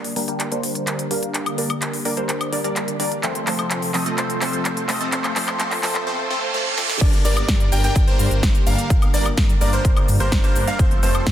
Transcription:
Already playing: analog synth pad D3 G3 A#3 G4 A#4, supersaw synth G3 A#3 D4 A#4 D5, riser
0.04 open hi-hat
0.16 supersaw synth G3 A#3 D4 A#4 G5, open hi-hat
0.28 supersaw synth G3 A#3 D4 A#4 G5, closed hi-hat
0.40 clap, closed hi-hat
0.52 supersaw synth G3 A#3 D4 A#4 C5, closed hi-hat
0.63 open hi-hat
0.75 closed hi-hat
0.87 clap, closed hi-hat
0.99 closed hi-hat
1.11 supersaw synth G3 A#3 D4 A#4 F5, open hi-hat
1.23 closed hi-hat
1.34 clap, closed hi-hat
1.46 closed hi-hat, high woodblock
1.58 supersaw synth G3 A#3 D4 A#4 D5, open hi-hat
1.70 closed hi-hat, high woodblock
1.82 clap, closed hi-hat
1.94 open hi-hat
2.05 supersaw synth G3 A#3 D4 A#4 D5, open hi-hat
2.17 supersaw synth G3 A#3 D4 A#4 C5, closed hi-hat
2.29 clap, closed hi-hat
2.41 closed hi-hat, high woodblock
2.52 supersaw synth G3 A#3 D4 A#4 D5, open hi-hat
2.64 supersaw synth G3 A#3 D4 A#4 D5, closed hi-hat
2.76 clap, closed hi-hat
2.88 closed hi-hat
3.00 supersaw synth G3 A#3 D4 A#4 D5, open hi-hat
3.12 closed hi-hat
3.23 analog synth pad C3 F3 A3 F4 A4, supersaw synth F3 A3 C4 A4 C5, clap, closed hi-hat
3.35 closed hi-hat
3.47 supersaw synth F3 A3 C4 A4 C5, clap, open hi-hat
3.59 closed hi-hat, high woodblock
3.71 clap, closed hi-hat
3.82 open hi-hat
3.94 supersaw synth F3 A3 C4 A4 D#5, clap, open hi-hat
4.06 supersaw synth F3 A3 C4 A4 D#5, closed hi-hat
4.18 supersaw synth F3 A3 C4 A4 C5, clap, closed hi-hat
4.30 closed hi-hat
4.41 supersaw synth F3 A3 C4 A4 C5, clap, open hi-hat
4.53 closed hi-hat
4.65 clap, closed hi-hat
4.77 closed hi-hat
4.89 supersaw synth F3 A3 C4 A4 D#5, clap, open hi-hat
5.00 supersaw synth F3 A3 C4 A4 D#5, closed hi-hat
5.12 supersaw synth F3 A3 C4 A4 C5, clap, closed hi-hat
5.24 clap, closed hi-hat, high woodblock
5.36 supersaw synth F3 A3 C4 A4 C5, clap, open hi-hat
5.48 clap, closed hi-hat, high woodblock
5.60 supersaw synth F3 A3 C4 A4 C5, clap, closed hi-hat
5.71 clap, open hi-hat
5.83 supersaw synth F3 A3 C4 A4 C5, clap, open hi-hat
5.95 clap, closed hi-hat
6.07 supersaw synth F3 A3 C4 A4 C5, reverse cymbal
6.30 supersaw synth F3 A3 C4 A4 C5
6.54 supersaw synth F3 A3 C4 A4 C5
6.78 supersaw synth F3 A3 C4 A4 C5, snare
6.90 snare
7.01 detuned saw bass G1, analog synth pad D3 G3 A#3 G4 A#4, supersaw synth G3 A#3 D4 A#4 D5, grand piano D5, kick, closed hi-hat, crash, shaker
7.13 closed hi-hat
7.25 detuned saw bass G1, supersaw synth G3 A#3 D4 A#4 D5, grand piano D5, open hi-hat, shaker
7.37 closed hi-hat, high woodblock, shaker
7.48 detuned saw bass G2, kick, snare, closed hi-hat, shaker
7.60 closed hi-hat, shaker
7.72 detuned saw bass G1, supersaw synth G3 A#3 D4 A#4 G5, grand piano G5, open hi-hat, shaker
7.84 supersaw synth G3 A#3 D4 A#4 G5, grand piano G5, closed hi-hat, shaker
7.96 detuned saw bass G1, kick, closed hi-hat, shaker
8.07 supersaw synth G3 A#3 D4 A#4 C5, grand piano C5, closed hi-hat
8.19 detuned saw bass G2, open hi-hat, shaker
8.31 detuned saw bass G1, closed hi-hat, shaker
8.43 detuned saw bass G1, kick, snare, closed hi-hat, shaker
8.55 closed hi-hat, shaker
8.67 detuned saw bass G1, supersaw synth G3 A#3 D4 A#4 F5, grand piano F5, open hi-hat, shaker
8.78 closed hi-hat, shaker
8.90 detuned saw bass G1, analog synth pad F4, kick, closed hi-hat, shaker
9.02 closed hi-hat, high woodblock, shaker
9.14 detuned saw bass G1, supersaw synth G3 A#3 D4 A#4 D5, grand piano D5, open hi-hat, shaker
9.26 closed hi-hat, high woodblock, shaker
9.37 detuned saw bass G2, kick, snare, closed hi-hat, shaker
9.49 closed hi-hat, shaker
9.61 detuned saw bass G1, supersaw synth G3 A#3 D4 A#4 D5, grand piano D5, open hi-hat, shaker
9.73 supersaw synth G3 A#3 D4 A#4 C5, grand piano C5, closed hi-hat, shaker
9.85 detuned saw bass G1, kick, closed hi-hat, shaker
9.97 closed hi-hat, high woodblock
10.08 detuned saw bass G2, open hi-hat, shaker
10.20 detuned saw bass G1, supersaw synth G3 A#3 D4 A#4 C5, grand piano C5, closed hi-hat, shaker
10.32 detuned saw bass G1, kick, snare, closed hi-hat, shaker
10.44 supersaw synth G3 A#3 D4 A#4 C5, grand piano C5, closed hi-hat, shaker
10.56 detuned saw bass G1, open hi-hat, shaker
10.67 supersaw synth G3 A#3 D4 A#4 F5, grand piano F5, closed hi-hat, shaker
10.79 detuned saw bass F1, analog synth pad C3 F3 A3 F4 A4, supersaw synth F3 A3 C4 A4 C5, grand piano C5, kick, closed hi-hat, shaker
10.91 closed hi-hat
11.03 detuned saw bass F1, supersaw synth F3 A3 C4 A4 C5, grand piano C5, open hi-hat, shaker
11.15 closed hi-hat, high woodblock, shaker
11.27 detuned saw bass F2, kick, snare, closed hi-hat, shaker

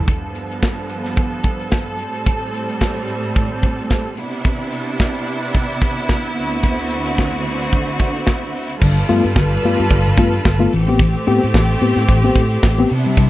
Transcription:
0.08 string section G2 F3 B3 A4, kick, closed hi-hat
0.35 closed hi-hat
0.51 closed hi-hat
0.62 kick, snare, closed hi-hat
0.89 closed hi-hat
1.04 snare, closed hi-hat
1.16 kick, closed hi-hat
1.43 kick, closed hi-hat
1.60 closed hi-hat
1.71 kick, snare, closed hi-hat
1.99 string section A2 G3 C4, closed hi-hat
2.14 closed hi-hat
2.26 kick, closed hi-hat
2.54 closed hi-hat
2.70 closed hi-hat
2.81 kick, snare, closed hi-hat
2.96 closed hi-hat
3.08 closed hi-hat
3.23 closed hi-hat
3.36 kick, closed hi-hat
3.62 kick, closed hi-hat
3.79 closed hi-hat
3.90 kick, snare, closed hi-hat
4.17 string section C3 B3 D4 E4, closed hi-hat
4.32 closed hi-hat
4.44 kick, closed hi-hat
4.72 closed hi-hat
4.88 closed hi-hat
5.00 kick, snare, closed hi-hat
5.26 closed hi-hat
5.42 closed hi-hat
5.54 kick, closed hi-hat
5.81 kick, closed hi-hat
5.98 closed hi-hat
6.09 kick, snare, closed hi-hat
6.36 string section D2 D3 C4 F#4, open hi-hat
6.51 closed hi-hat
6.63 kick, closed hi-hat
6.78 closed hi-hat
6.90 closed hi-hat
7.06 closed hi-hat
7.18 kick, snare, closed hi-hat
7.45 closed hi-hat
7.60 snare, closed hi-hat
7.72 kick, closed hi-hat
7.99 kick, closed hi-hat
8.15 closed hi-hat
8.26 kick, snare, closed hi-hat
8.55 open hi-hat
8.69 closed hi-hat
8.80 fingered electric bass G1, reed electric piano G2 D3, string section G3 F4 A4 B4, kick, crash, shaker
8.97 shaker
9.09 fingered electric bass G2, reed electric piano A3 B3 F4, closed hi-hat
9.24 fingered electric bass G2, reed electric piano B3 F4, closed hi-hat, shaker
9.36 fingered electric bass G1, reed electric piano G2 D3, kick, snare, shaker
9.51 closed hi-hat, shaker
9.62 fingered electric bass G2, reed electric piano A3 B3 F4, closed hi-hat, shaker
9.77 fingered electric bass G2, reed electric piano B3 F4, closed hi-hat, shaker
9.90 fingered electric bass G1, reed electric piano B3 F4, kick, closed hi-hat, shaker
10.05 reed electric piano G2 D3, closed hi-hat, shaker
10.17 fingered electric bass G2, reed electric piano A3 B3 F4, kick, closed hi-hat
10.33 closed hi-hat, shaker
10.45 fingered electric bass G1, kick, snare, shaker
10.59 reed electric piano A3 B3 F4, shaker
10.72 fingered electric bass A1, reed electric piano A2 E3, string section A3 C4 G4, open hi-hat, shaker
10.87 reed electric piano B3 C4 G4, closed hi-hat, shaker
10.99 reed electric piano A2 E3, kick, closed hi-hat, shaker
11.14 closed hi-hat, shaker
11.27 fingered electric bass A2, reed electric piano B3 C4 G4, closed hi-hat
11.42 fingered electric bass A2, reed electric piano C4 G4, closed hi-hat, shaker
11.54 fingered electric bass A1, reed electric piano A2 E3, kick, snare, shaker
11.69 shaker
11.80 fingered electric bass A2, reed electric piano B3 C4 G4, closed hi-hat, shaker
11.95 fingered electric bass A2, reed electric piano C4 G4, snare, closed hi-hat, shaker
12.08 fingered electric bass A1, reed electric piano A2 E3, kick, closed hi-hat, shaker
12.23 reed electric piano B3 C4 G4, shaker
12.35 fingered electric bass A2, reed electric piano C4 G4, kick, closed hi-hat
12.51 closed hi-hat, shaker
12.63 fingered electric bass A1, kick, snare, shaker
12.77 reed electric piano B3 C4 G4, shaker
12.89 string section C3 B3 D4 E4, fingered electric bass C3, open hi-hat, shaker
13.05 reed electric piano C3 G3, closed hi-hat, shaker
13.17 reed electric piano C3 G3, kick, closed hi-hat, shaker

